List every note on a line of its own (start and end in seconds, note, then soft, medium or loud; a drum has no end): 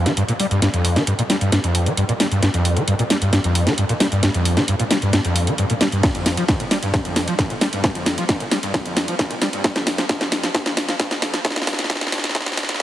0.06 0.12 F3 loud
0.06 snare soft
0.06 closed hi-hat medium
0.17 0.23 G2 medium
0.17 closed hi-hat medium
0.28 0.32 A#2 medium
0.28 closed hi-hat medium
0.40 0.46 G3 medium
0.40 open hi-hat medium
0.51 0.60 G2 medium
0.51 closed hi-hat medium
0.62 0.68 G2 loud
0.62 snare soft
0.62 closed hi-hat medium
0.74 0.98 F2 medium
0.74 closed hi-hat medium
0.85 open hi-hat loud
0.96 1.02 F3 loud
0.96 snare soft
0.96 closed hi-hat medium
1.07 1.14 G2 medium
1.07 closed hi-hat medium
1.19 1.22 A#2 medium
1.19 closed hi-hat medium
1.30 1.36 G3 medium
1.30 snare medium
1.30 open hi-hat medium
1.41 1.50 G2 medium
1.41 closed hi-hat medium
1.52 1.59 G2 loud
1.52 snare medium
1.52 closed hi-hat medium
1.64 1.88 F2 medium
1.64 closed hi-hat medium
1.75 open hi-hat loud
1.86 1.92 F3 loud
1.86 closed hi-hat medium
1.97 2.04 G2 medium
1.97 closed hi-hat medium
2.09 2.13 A#2 medium
2.09 closed hi-hat medium
2.20 2.26 G3 medium
2.20 snare medium
2.20 open hi-hat medium
2.31 2.41 G2 medium
2.31 closed hi-hat medium
2.42 2.49 G2 loud
2.42 snare medium
2.42 closed hi-hat medium
2.54 2.78 F2 medium
2.54 closed hi-hat medium
2.65 open hi-hat loud
2.77 2.83 F3 loud
2.77 closed hi-hat medium
2.88 2.94 G2 medium
2.88 closed hi-hat medium
2.99 3.03 A#2 medium
2.99 closed hi-hat medium
3.10 3.16 G3 medium
3.10 snare medium
3.10 open hi-hat medium
3.22 3.31 G2 medium
3.22 closed hi-hat medium
3.33 3.39 G2 loud
3.33 snare medium
3.33 closed hi-hat medium
3.44 3.68 F2 medium
3.44 closed hi-hat medium
3.55 open hi-hat loud
3.67 3.73 F3 loud
3.67 snare medium
3.67 closed hi-hat medium
3.78 3.84 G2 medium
3.78 closed hi-hat medium
3.89 3.93 A#2 medium
3.89 closed hi-hat medium
4.00 4.07 G3 medium
4.00 snare medium
4.00 open hi-hat medium
4.12 4.21 G2 medium
4.12 closed hi-hat medium
4.23 4.29 G2 loud
4.23 snare medium
4.23 closed hi-hat medium
4.34 4.59 F2 medium
4.34 closed hi-hat medium
4.45 open hi-hat loud
4.57 4.63 F3 loud
4.57 snare medium
4.57 closed hi-hat soft
4.68 4.74 G2 medium
4.68 closed hi-hat medium
4.80 4.83 A#2 medium
4.80 closed hi-hat medium
4.91 4.97 G3 medium
4.91 snare medium
4.91 open hi-hat medium
5.02 5.11 G2 medium
5.02 closed hi-hat soft
5.13 5.20 G2 loud
5.13 snare medium
5.13 closed hi-hat medium
5.25 5.49 F2 medium
5.25 closed hi-hat medium
5.36 open hi-hat loud
5.47 5.53 F3 loud
5.47 closed hi-hat medium
5.58 5.65 G2 medium
5.58 closed hi-hat medium
5.70 5.73 A#2 medium
5.70 closed hi-hat medium
5.81 5.87 G3 medium
5.81 snare medium
5.81 open hi-hat medium
5.92 6.01 G2 medium
5.92 closed hi-hat soft
6.03 6.10 G2 medium
6.03 kick loud
6.03 snare medium
6.03 closed hi-hat medium
6.03 ride medium
6.15 6.37 F2 medium
6.15 closed hi-hat medium
6.15 ride medium
6.26 snare medium
6.26 open hi-hat loud
6.26 ride medium
6.37 6.44 F3 loud
6.37 closed hi-hat soft
6.37 ride medium
6.48 6.55 G2 medium
6.48 kick loud
6.48 snare medium
6.48 closed hi-hat medium
6.48 ride medium
6.60 6.64 A#2 medium
6.60 closed hi-hat soft
6.60 ride medium
6.71 6.77 G3 medium
6.71 snare medium
6.71 open hi-hat medium
6.71 ride medium
6.83 6.92 G2 medium
6.83 closed hi-hat medium
6.83 ride medium
6.94 kick loud
6.94 snare medium
6.94 closed hi-hat medium
6.94 ride medium
7.05 7.27 F2 medium
7.05 closed hi-hat medium
7.05 ride medium
7.16 snare medium
7.16 open hi-hat loud
7.16 ride medium
7.28 7.34 F3 medium
7.28 closed hi-hat soft
7.28 ride medium
7.39 7.45 G2 medium
7.39 kick loud
7.39 snare medium
7.39 closed hi-hat medium
7.39 ride medium
7.50 7.54 A#2 medium
7.50 closed hi-hat soft
7.50 ride medium
7.61 7.68 G3 medium
7.61 snare medium
7.61 open hi-hat medium
7.61 ride medium
7.73 7.82 G2 medium
7.73 closed hi-hat soft
7.73 ride medium
7.84 7.90 G2 loud
7.84 kick loud
7.84 snare medium
7.84 closed hi-hat medium
7.84 ride medium
7.95 8.17 F2 medium
7.95 closed hi-hat soft
7.95 ride medium
8.06 snare medium
8.06 open hi-hat loud
8.06 ride medium
8.18 8.24 F3 loud
8.18 closed hi-hat soft
8.18 ride medium
8.29 8.35 G2 medium
8.29 kick loud
8.29 snare medium
8.29 closed hi-hat medium
8.29 ride medium
8.40 8.44 A#2 medium
8.40 closed hi-hat medium
8.40 ride medium
8.51 8.58 G3 medium
8.51 snare medium
8.51 open hi-hat medium
8.51 ride medium
8.63 8.72 G2 medium
8.63 closed hi-hat soft
8.63 ride medium
8.74 kick loud
8.74 snare medium
8.74 closed hi-hat medium
8.74 ride medium
8.86 9.08 F2 medium
8.86 closed hi-hat medium
8.86 ride medium
8.97 snare medium
8.97 open hi-hat loud
8.97 ride medium
9.08 9.14 F3 loud
9.08 closed hi-hat soft
9.08 ride medium
9.19 9.26 G2 medium
9.19 kick loud
9.19 snare medium
9.19 closed hi-hat medium
9.19 ride medium
9.31 9.34 A#2 medium
9.31 closed hi-hat soft
9.31 ride medium
9.42 9.48 G3 medium
9.42 snare medium
9.42 open hi-hat medium
9.42 ride medium
9.53 9.62 G2 medium
9.53 closed hi-hat soft
9.53 ride medium
9.64 kick loud
9.64 snare medium
9.64 closed hi-hat medium
9.64 ride medium
9.76 9.98 F2 medium
9.76 snare medium
9.76 closed hi-hat medium
9.76 ride medium
9.87 snare medium
9.87 open hi-hat loud
9.87 ride medium
9.98 10.04 F3 loud
9.98 snare medium
9.98 closed hi-hat soft
9.98 ride medium
10.09 10.16 G2 medium
10.09 kick loud
10.09 snare medium
10.09 closed hi-hat medium
10.09 ride medium
10.21 10.43 F2 medium
10.21 snare medium
10.21 closed hi-hat medium
10.21 ride medium
10.32 snare medium
10.32 open hi-hat medium
10.32 ride medium
10.43 10.50 F3 loud
10.43 snare medium
10.43 closed hi-hat medium
10.43 ride medium
10.54 10.61 G2 loud
10.54 kick loud
10.54 snare loud
10.54 closed hi-hat medium
10.54 ride medium
10.66 10.88 F2 medium
10.66 snare medium
10.66 closed hi-hat medium
10.66 ride medium
10.77 snare loud
10.77 open hi-hat loud
10.77 ride medium
10.89 10.95 F3 loud
10.89 snare medium
10.89 closed hi-hat soft
10.89 ride medium
11.00 11.06 G2 loud
11.00 kick loud
11.00 snare loud
11.00 closed hi-hat medium
11.00 ride medium
11.11 11.33 F2 medium
11.11 snare medium
11.11 closed hi-hat medium
11.11 ride medium
11.22 snare loud
11.22 open hi-hat medium
11.22 ride medium
11.34 11.40 F3 loud
11.34 snare medium
11.34 closed hi-hat medium
11.34 ride medium
11.45 11.51 G2 loud
11.45 kick loud
11.45 snare loud
11.45 closed hi-hat medium
11.45 ride medium
11.50 snare medium
11.56 11.66 F2 medium
11.56 snare medium
11.56 closed hi-hat medium
11.56 ride medium
11.62 snare medium
11.67 11.74 G2 loud
11.67 kick medium
11.67 snare loud
11.67 open hi-hat loud
11.67 ride medium
11.73 snare medium
11.79 11.88 F2 medium
11.79 snare medium
11.79 closed hi-hat medium
11.79 ride medium
11.84 snare medium
11.90 11.96 G2 loud
11.90 kick loud
11.90 snare loud
11.90 closed hi-hat medium
11.90 ride medium
11.96 snare medium
12.01 12.11 F2 medium
12.01 snare medium
12.01 closed hi-hat medium
12.01 ride medium
12.07 snare medium
12.12 12.19 G2 loud
12.12 snare loud
12.12 open hi-hat medium
12.12 ride medium
12.18 snare medium
12.24 12.33 F2 medium
12.24 snare loud
12.24 closed hi-hat medium
12.24 ride medium
12.29 snare loud
12.35 12.41 G2 loud
12.35 kick loud
12.35 snare loud
12.35 closed hi-hat medium
12.35 ride medium
12.41 snare medium
12.46 12.56 F2 medium
12.46 snare loud
12.46 closed hi-hat medium
12.46 ride medium
12.52 snare loud
12.57 12.64 G2 loud
12.57 snare loud
12.57 open hi-hat loud
12.57 ride medium
12.63 snare loud
12.69 12.78 F2 medium
12.69 snare loud
12.69 closed hi-hat medium
12.69 ride medium
12.74 snare medium